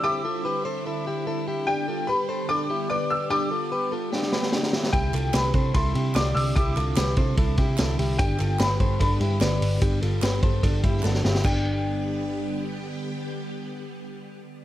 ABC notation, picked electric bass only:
X:1
M:4/4
L:1/8
Q:1/4=147
K:Gmix
V:1 name="Picked electric bass" clef=bass
z8 | z8 | z8 | C,, C,, C,, C, C,, C, C,, C,, |
C,, C,, C,, C, C,, C, C,, C,, | G,,, G,,, G,,, G,, G,,, G,, G,,, G,,, | G,,, G,,, G,,, G,, G,,, G,, G,,, G,,, | G,,,8- |
G,,,8 |]